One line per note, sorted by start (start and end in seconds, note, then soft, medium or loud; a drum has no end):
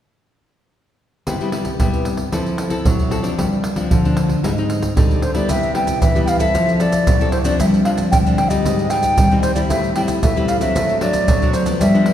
1.27 1.72 C3 medium
1.27 1.77 C3 medium
1.27 1.35 G3 soft
1.27 1.35 B3 soft
1.27 1.36 E4 medium
1.27 pandeiro medium
1.27 surdo medium
1.41 1.50 G3 medium
1.41 1.50 B3 soft
1.41 1.50 E4 medium
1.41 pandeiro soft
1.52 1.68 G3 medium
1.52 1.69 B3 soft
1.52 1.69 E4 soft
1.52 pandeiro medium
1.65 pandeiro soft
1.65 surdo soft
1.79 2.30 G2 medium
1.79 2.24 C3 medium
1.79 2.14 G3 medium
1.79 2.14 B3 medium
1.79 2.14 E4 medium
1.79 pandeiro medium
1.79 surdo medium
1.93 pandeiro soft
2.05 pandeiro medium
2.17 pandeiro medium
2.17 surdo soft
2.32 2.83 F3 soft
2.32 2.77 F3 medium
2.32 2.68 C4 soft
2.32 2.68 E4 medium
2.32 2.68 A4 medium
2.32 pandeiro medium
2.32 surdo medium
2.46 pandeiro soft
2.58 pandeiro medium
2.70 3.06 C4 medium
2.70 3.07 E4 medium
2.70 3.07 A4 medium
2.70 pandeiro medium
2.70 surdo soft
2.85 3.35 C3 medium
2.85 3.30 F#3 medium
2.85 pandeiro medium
2.85 surdo medium
2.99 pandeiro soft
2.99 surdo soft
3.11 3.19 C4 medium
3.11 3.19 E4 medium
3.11 3.20 A4 medium
3.11 pandeiro medium
3.11 surdo soft
3.23 3.46 F3 medium
3.23 3.46 C4 medium
3.23 3.46 D4 medium
3.23 pandeiro medium
3.38 3.88 G2 medium
3.38 3.83 G3 medium
3.38 pandeiro medium
3.38 surdo medium
3.52 pandeiro soft
3.64 pandeiro medium
3.76 3.99 F3 medium
3.76 3.99 C4 medium
3.76 3.99 D4 medium
3.76 pandeiro medium
3.76 surdo soft
3.90 4.41 D3 medium
3.90 4.35 F3 medium
3.90 pandeiro medium
3.90 surdo medium
4.05 4.42 F3 medium
4.05 4.42 C4 medium
4.05 4.42 D4 medium
4.05 pandeiro soft
4.17 pandeiro medium
4.29 pandeiro soft
4.29 surdo soft
4.43 4.94 G#2 medium
4.43 4.51 G3 medium
4.43 4.88 G#3 medium
4.43 4.52 C4 medium
4.43 4.52 D#4 medium
4.43 pandeiro medium
4.43 surdo medium
4.58 4.93 C4 medium
4.58 4.93 D#4 medium
4.58 pandeiro soft
4.70 pandeiro medium
4.82 pandeiro medium
4.82 surdo soft
4.96 5.41 D3 medium
4.96 5.21 G3 medium
4.96 5.22 C4 medium
4.96 5.22 D#4 medium
4.96 pandeiro medium
4.96 surdo loud
5.11 pandeiro soft
5.11 surdo soft
5.22 5.34 C5 medium
5.22 pandeiro medium
5.22 surdo soft
5.35 5.74 G3 medium
5.35 5.74 B3 medium
5.35 5.75 E4 medium
5.35 5.51 D5 medium
5.35 pandeiro medium
5.49 5.94 C3 medium
5.49 5.99 C3 medium
5.49 5.75 E5 medium
5.49 pandeiro medium
5.49 maracas medium
5.49 surdo medium
5.63 pandeiro soft
5.63 maracas soft
5.75 6.00 G3 soft
5.75 6.00 B3 medium
5.75 6.00 E4 medium
5.75 6.00 G5 medium
5.75 pandeiro medium
5.87 pandeiro medium
5.87 maracas medium
5.87 surdo soft
6.02 6.52 G2 medium
6.02 6.46 E3 medium
6.02 6.24 E5 medium
6.02 pandeiro medium
6.02 maracas medium
6.02 surdo medium
6.15 6.37 G3 medium
6.15 6.37 B3 medium
6.15 6.38 E4 medium
6.15 pandeiro soft
6.15 maracas soft
6.25 6.39 F5 medium
6.25 6.30 G5 medium
6.25 pandeiro medium
6.25 maracas medium
6.39 6.76 C4 medium
6.39 6.76 E4 medium
6.39 6.76 A4 medium
6.39 6.77 E5 medium
6.39 pandeiro medium
6.39 maracas medium
6.39 surdo soft
6.54 7.04 F3 medium
6.54 6.99 F3 medium
6.54 pandeiro medium
6.54 maracas medium
6.54 surdo medium
6.68 pandeiro soft
6.68 maracas soft
6.80 7.16 C4 medium
6.80 7.16 E4 soft
6.80 7.16 A4 medium
6.80 7.29 D5 loud
6.80 pandeiro medium
6.80 maracas medium
6.92 pandeiro medium
6.92 maracas medium
6.92 surdo soft
7.07 7.57 C3 medium
7.07 7.52 F#3 medium
7.07 pandeiro medium
7.07 maracas medium
7.07 surdo loud
7.21 7.42 C4 medium
7.21 7.43 E4 medium
7.21 7.43 A4 medium
7.21 pandeiro soft
7.21 maracas soft
7.21 surdo soft
7.32 7.38 C5 medium
7.32 pandeiro medium
7.32 surdo soft
7.45 7.81 F3 medium
7.45 7.81 C4 medium
7.45 7.81 D4 medium
7.45 7.58 D5 medium
7.45 pandeiro medium
7.45 maracas medium
7.59 8.10 G2 medium
7.59 8.04 G3 loud
7.59 7.66 E5 medium
7.59 pandeiro medium
7.59 maracas medium
7.59 surdo medium
7.74 pandeiro soft
7.74 maracas soft
7.85 8.21 F3 medium
7.85 8.21 C4 soft
7.85 8.22 D4 medium
7.85 7.91 F5 medium
7.85 pandeiro medium
7.98 pandeiro medium
7.98 maracas medium
7.98 surdo soft
8.11 8.63 D3 medium
8.11 8.57 G3 medium
8.11 8.17 G5 loud
8.11 pandeiro medium
8.11 maracas medium
8.11 surdo medium
8.26 8.48 F3 medium
8.26 8.48 C4 medium
8.26 8.48 D4 medium
8.26 pandeiro soft
8.26 maracas soft
8.37 8.50 G5 medium
8.37 pandeiro medium
8.49 8.86 G3 medium
8.49 8.86 C4 medium
8.49 8.87 D#4 medium
8.49 8.92 D#5 medium
8.49 pandeiro medium
8.49 maracas medium
8.49 surdo soft
8.65 9.15 G#2 medium
8.65 9.10 G#3 medium
8.65 pandeiro medium
8.65 maracas medium
8.65 surdo medium
8.79 pandeiro soft
8.79 maracas soft
8.90 9.26 G3 medium
8.90 9.27 C4 medium
8.90 9.27 D#4 medium
8.90 9.42 G5 loud
8.90 pandeiro medium
8.90 maracas medium
9.03 pandeiro medium
9.03 maracas medium
9.03 surdo soft
9.18 9.68 D#3 medium
9.18 9.62 G3 medium
9.18 pandeiro medium
9.18 maracas medium
9.18 surdo loud
9.31 9.53 G3 medium
9.31 9.53 C4 medium
9.31 9.54 D#4 medium
9.31 pandeiro soft
9.31 maracas soft
9.31 surdo soft
9.42 9.54 C5 medium
9.42 pandeiro medium
9.42 maracas medium
9.42 surdo soft
9.55 9.91 G3 medium
9.55 9.92 C4 medium
9.55 9.92 E4 medium
9.55 9.61 D5 medium
9.55 pandeiro medium
9.55 maracas medium
9.69 10.20 A2 medium
9.69 10.15 A3 loud
9.69 9.94 E5 medium
9.69 pandeiro medium
9.69 maracas medium
9.69 surdo medium
9.84 pandeiro soft
9.84 maracas soft
9.95 10.31 G3 medium
9.95 10.32 C4 soft
9.95 10.32 E4 medium
9.95 10.01 G5 medium
9.95 pandeiro medium
10.08 pandeiro medium
10.08 maracas medium
10.08 surdo soft
10.22 10.73 E3 medium
10.22 10.68 A3 medium
10.22 10.50 E5 medium
10.22 pandeiro medium
10.22 maracas medium
10.22 surdo medium
10.36 10.58 G3 medium
10.36 10.58 C4 medium
10.36 10.59 E4 medium
10.36 pandeiro soft
10.36 maracas soft
10.48 10.60 F5 medium
10.48 pandeiro medium
10.48 maracas medium
10.60 10.96 F#3 medium
10.60 10.97 C4 medium
10.60 10.97 D4 medium
10.60 10.98 E5 medium
10.60 pandeiro soft
10.60 maracas medium
10.60 surdo soft
10.75 11.25 A2 medium
10.75 11.20 A3 medium
10.75 pandeiro medium
10.75 maracas medium
10.75 surdo medium
10.89 pandeiro soft
10.89 maracas soft
11.01 11.37 F#3 medium
11.01 11.37 C4 medium
11.01 11.37 D4 medium
11.01 11.50 D5 medium
11.01 pandeiro medium
11.13 pandeiro medium
11.13 maracas medium
11.13 surdo soft
11.27 11.78 A2 medium
11.27 11.72 F#3 medium
11.27 pandeiro medium
11.27 maracas medium
11.27 surdo loud
11.42 11.64 F#3 medium
11.42 11.64 C4 medium
11.42 11.64 D4 medium
11.42 pandeiro soft
11.42 maracas soft
11.42 surdo soft
11.54 11.66 C5 medium
11.54 pandeiro medium
11.54 maracas medium
11.54 surdo soft
11.66 11.93 F3 medium
11.66 11.94 B3 medium
11.66 11.94 D4 medium
11.66 pandeiro medium
11.66 maracas medium
11.80 12.13 G2 medium
11.80 12.13 G3 loud
11.80 12.13 E5 medium
11.80 pandeiro medium
11.80 maracas medium
11.80 surdo medium
11.94 12.13 F3 medium
11.94 12.13 B3 medium
11.94 12.13 D4 medium
11.94 pandeiro soft
11.94 maracas soft
12.06 pandeiro medium